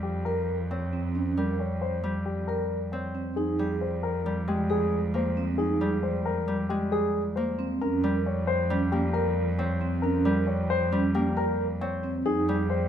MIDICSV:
0, 0, Header, 1, 5, 480
1, 0, Start_track
1, 0, Tempo, 444444
1, 1237, Time_signature, 5, 2, 24, 8
1, 13915, End_track
2, 0, Start_track
2, 0, Title_t, "Grand piano"
2, 0, Program_c, 0, 0
2, 31, Note_on_c, 0, 67, 56
2, 271, Note_on_c, 0, 70, 64
2, 346, Note_off_c, 0, 67, 0
2, 586, Note_off_c, 0, 70, 0
2, 765, Note_on_c, 0, 73, 56
2, 1071, Note_off_c, 0, 73, 0
2, 1722, Note_on_c, 0, 73, 52
2, 1960, Note_on_c, 0, 72, 66
2, 2030, Note_off_c, 0, 73, 0
2, 2270, Note_off_c, 0, 72, 0
2, 2435, Note_on_c, 0, 67, 57
2, 2674, Note_on_c, 0, 70, 67
2, 2748, Note_off_c, 0, 67, 0
2, 2987, Note_off_c, 0, 70, 0
2, 3153, Note_on_c, 0, 73, 50
2, 3467, Note_off_c, 0, 73, 0
2, 3632, Note_on_c, 0, 68, 59
2, 3947, Note_off_c, 0, 68, 0
2, 4118, Note_on_c, 0, 72, 54
2, 4354, Note_on_c, 0, 70, 69
2, 4429, Note_off_c, 0, 72, 0
2, 4667, Note_off_c, 0, 70, 0
2, 4842, Note_on_c, 0, 67, 61
2, 5081, Note_on_c, 0, 68, 68
2, 5150, Note_off_c, 0, 67, 0
2, 5390, Note_off_c, 0, 68, 0
2, 5565, Note_on_c, 0, 72, 57
2, 5871, Note_off_c, 0, 72, 0
2, 6025, Note_on_c, 0, 68, 62
2, 6344, Note_off_c, 0, 68, 0
2, 6511, Note_on_c, 0, 72, 57
2, 6756, Note_on_c, 0, 70, 73
2, 6826, Note_off_c, 0, 72, 0
2, 7068, Note_off_c, 0, 70, 0
2, 7228, Note_on_c, 0, 67, 63
2, 7473, Note_on_c, 0, 68, 73
2, 7545, Note_off_c, 0, 67, 0
2, 7787, Note_off_c, 0, 68, 0
2, 7946, Note_on_c, 0, 72, 61
2, 8265, Note_off_c, 0, 72, 0
2, 8440, Note_on_c, 0, 70, 67
2, 8749, Note_off_c, 0, 70, 0
2, 8925, Note_on_c, 0, 73, 59
2, 9151, Note_on_c, 0, 72, 82
2, 9231, Note_off_c, 0, 73, 0
2, 9467, Note_off_c, 0, 72, 0
2, 9632, Note_on_c, 0, 67, 67
2, 9864, Note_on_c, 0, 70, 73
2, 9947, Note_off_c, 0, 67, 0
2, 10184, Note_off_c, 0, 70, 0
2, 10350, Note_on_c, 0, 73, 61
2, 10666, Note_off_c, 0, 73, 0
2, 10822, Note_on_c, 0, 70, 69
2, 11143, Note_off_c, 0, 70, 0
2, 11305, Note_on_c, 0, 73, 63
2, 11556, Note_on_c, 0, 72, 89
2, 11624, Note_off_c, 0, 73, 0
2, 11868, Note_off_c, 0, 72, 0
2, 12039, Note_on_c, 0, 67, 69
2, 12282, Note_on_c, 0, 70, 81
2, 12349, Note_off_c, 0, 67, 0
2, 12590, Note_off_c, 0, 70, 0
2, 12757, Note_on_c, 0, 73, 70
2, 13069, Note_off_c, 0, 73, 0
2, 13237, Note_on_c, 0, 68, 75
2, 13549, Note_off_c, 0, 68, 0
2, 13715, Note_on_c, 0, 72, 66
2, 13915, Note_off_c, 0, 72, 0
2, 13915, End_track
3, 0, Start_track
3, 0, Title_t, "Vibraphone"
3, 0, Program_c, 1, 11
3, 281, Note_on_c, 1, 70, 65
3, 590, Note_off_c, 1, 70, 0
3, 1004, Note_on_c, 1, 60, 66
3, 1244, Note_on_c, 1, 61, 62
3, 1311, Note_off_c, 1, 60, 0
3, 1480, Note_on_c, 1, 70, 53
3, 1551, Note_off_c, 1, 61, 0
3, 1789, Note_off_c, 1, 70, 0
3, 2685, Note_on_c, 1, 70, 62
3, 2991, Note_off_c, 1, 70, 0
3, 3398, Note_on_c, 1, 60, 65
3, 3640, Note_on_c, 1, 63, 72
3, 3709, Note_off_c, 1, 60, 0
3, 3877, Note_on_c, 1, 68, 54
3, 3950, Note_off_c, 1, 63, 0
3, 4188, Note_off_c, 1, 68, 0
3, 5074, Note_on_c, 1, 68, 71
3, 5387, Note_off_c, 1, 68, 0
3, 5800, Note_on_c, 1, 60, 72
3, 6036, Note_on_c, 1, 63, 71
3, 6109, Note_off_c, 1, 60, 0
3, 6274, Note_on_c, 1, 68, 56
3, 6348, Note_off_c, 1, 63, 0
3, 6587, Note_off_c, 1, 68, 0
3, 7477, Note_on_c, 1, 68, 72
3, 7789, Note_off_c, 1, 68, 0
3, 8195, Note_on_c, 1, 60, 81
3, 8441, Note_on_c, 1, 61, 77
3, 8508, Note_off_c, 1, 60, 0
3, 8678, Note_on_c, 1, 70, 59
3, 8750, Note_off_c, 1, 61, 0
3, 8989, Note_off_c, 1, 70, 0
3, 9396, Note_on_c, 1, 61, 66
3, 9708, Note_off_c, 1, 61, 0
3, 9872, Note_on_c, 1, 70, 77
3, 10187, Note_off_c, 1, 70, 0
3, 10593, Note_on_c, 1, 60, 78
3, 10837, Note_on_c, 1, 61, 80
3, 10907, Note_off_c, 1, 60, 0
3, 11076, Note_on_c, 1, 70, 64
3, 11148, Note_off_c, 1, 61, 0
3, 11388, Note_off_c, 1, 70, 0
3, 11791, Note_on_c, 1, 61, 69
3, 12106, Note_off_c, 1, 61, 0
3, 12277, Note_on_c, 1, 70, 79
3, 12589, Note_off_c, 1, 70, 0
3, 12997, Note_on_c, 1, 60, 79
3, 13237, Note_on_c, 1, 63, 85
3, 13308, Note_off_c, 1, 60, 0
3, 13480, Note_on_c, 1, 68, 59
3, 13549, Note_off_c, 1, 63, 0
3, 13790, Note_off_c, 1, 68, 0
3, 13915, End_track
4, 0, Start_track
4, 0, Title_t, "Harp"
4, 0, Program_c, 2, 46
4, 0, Note_on_c, 2, 55, 50
4, 0, Note_on_c, 2, 58, 47
4, 764, Note_on_c, 2, 60, 52
4, 1471, Note_off_c, 2, 55, 0
4, 1484, Note_on_c, 2, 55, 58
4, 2185, Note_off_c, 2, 55, 0
4, 2198, Note_on_c, 2, 55, 56
4, 2577, Note_off_c, 2, 58, 0
4, 3148, Note_off_c, 2, 60, 0
4, 3161, Note_on_c, 2, 60, 55
4, 3867, Note_off_c, 2, 55, 0
4, 3880, Note_on_c, 2, 55, 54
4, 4586, Note_off_c, 2, 55, 0
4, 4599, Note_on_c, 2, 55, 58
4, 4834, Note_on_c, 2, 56, 58
4, 5550, Note_on_c, 2, 58, 54
4, 6260, Note_off_c, 2, 55, 0
4, 6273, Note_on_c, 2, 55, 62
4, 6981, Note_off_c, 2, 55, 0
4, 6994, Note_on_c, 2, 55, 59
4, 7223, Note_off_c, 2, 56, 0
4, 7236, Note_on_c, 2, 56, 61
4, 7373, Note_off_c, 2, 60, 0
4, 7947, Note_off_c, 2, 58, 0
4, 7960, Note_on_c, 2, 58, 58
4, 8455, Note_off_c, 2, 56, 0
4, 8666, Note_off_c, 2, 55, 0
4, 8679, Note_on_c, 2, 55, 64
4, 9385, Note_off_c, 2, 55, 0
4, 9398, Note_on_c, 2, 55, 70
4, 9624, Note_off_c, 2, 58, 0
4, 9637, Note_on_c, 2, 58, 65
4, 10354, Note_on_c, 2, 60, 66
4, 11058, Note_off_c, 2, 55, 0
4, 11071, Note_on_c, 2, 55, 73
4, 11784, Note_off_c, 2, 55, 0
4, 11797, Note_on_c, 2, 55, 67
4, 12024, Note_off_c, 2, 58, 0
4, 12037, Note_on_c, 2, 58, 71
4, 12746, Note_off_c, 2, 60, 0
4, 12759, Note_on_c, 2, 60, 68
4, 13256, Note_off_c, 2, 58, 0
4, 13472, Note_off_c, 2, 55, 0
4, 13485, Note_on_c, 2, 55, 72
4, 13915, Note_off_c, 2, 55, 0
4, 13915, Note_off_c, 2, 60, 0
4, 13915, End_track
5, 0, Start_track
5, 0, Title_t, "Cello"
5, 0, Program_c, 3, 42
5, 0, Note_on_c, 3, 41, 59
5, 3500, Note_off_c, 3, 41, 0
5, 3638, Note_on_c, 3, 41, 60
5, 8298, Note_off_c, 3, 41, 0
5, 8448, Note_on_c, 3, 41, 73
5, 13103, Note_off_c, 3, 41, 0
5, 13240, Note_on_c, 3, 41, 76
5, 13915, Note_off_c, 3, 41, 0
5, 13915, End_track
0, 0, End_of_file